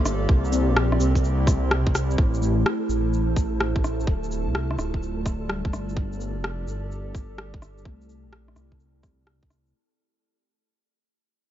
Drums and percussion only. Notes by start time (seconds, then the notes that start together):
0.06 cross-stick, cabasa, shaker
0.29 kick
0.45 shaker
0.53 cabasa, shaker
0.77 cross-stick
0.92 cross-stick
1.00 cabasa, shaker
1.15 kick, cabasa
1.24 shaker
1.47 kick, cross-stick, cabasa, shaker
1.71 cross-stick
1.87 kick
1.95 cross-stick, cabasa, shaker
2.11 shaker
2.18 kick
2.34 shaker
2.42 shaker
2.66 cross-stick
2.90 shaker
3.13 shaker
3.36 kick, shaker
3.60 cross-stick
3.76 kick
3.84 cross-stick, shaker
4.00 shaker
4.07 kick
4.24 shaker
4.31 shaker
4.55 cross-stick
4.71 cross-stick
4.79 cross-stick, shaker
4.94 kick
5.03 shaker
5.26 kick, cross-stick, shaker
5.49 cross-stick
5.65 kick
5.73 cross-stick, shaker
5.89 shaker
5.97 kick
6.13 shaker
6.21 shaker
6.44 cross-stick
6.68 shaker
6.91 shaker
7.15 kick, shaker
7.38 cross-stick
7.54 kick
7.62 cross-stick, shaker
7.78 shaker
7.85 kick
8.01 shaker
8.09 shaker
8.33 cross-stick
8.48 cross-stick
8.56 cross-stick, shaker
8.72 kick
8.80 shaker
9.03 kick, cross-stick, shaker
9.27 cross-stick
9.43 kick
9.50 cross-stick, shaker
9.66 shaker